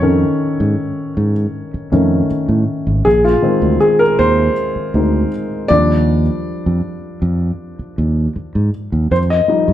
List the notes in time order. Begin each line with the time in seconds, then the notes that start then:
Already playing: F2 C5 C#5
0.02 D#3 C#4 A4
0.60 G#2
1.17 G#2
1.74 muted fingered electric bass stroke
1.92 F2 D#3 A3 C#4
2.31 muted fingered electric bass stroke
2.49 A2
2.87 G#1
3.05 A#1 G#4
3.24 F4
3.42 D#3 G#3 C4
3.62 D2
3.80 G#4
3.99 A#4
4.19 D#2 C5
4.76 muted fingered electric bass stroke
4.94 D2 G#3 C4 D#4
5.68 D#2 F3 G3 D4 D5
6.66 F2
7.22 F2
7.79 muted fingered electric bass stroke
7.98 D#2
8.36 muted fingered electric bass stroke
8.55 G#2
8.92 D#2
9.11 F2 C5
9.30 D#5
9.48 F3 G3 D#4
9.68 G2